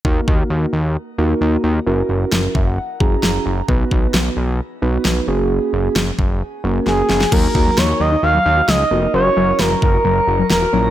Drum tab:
CC |----------------|----------------|----------------|----------------|
SD |----------------|----o-------o---|----o-------o---|----o-------o-oo|
BD |o-o-------------|------o---o-----|o-o-------------|------o---------|

CC |x---------------|----------------|
SD |----o-------o---|----o-------o---|
BD |o-o-------------|------o---------|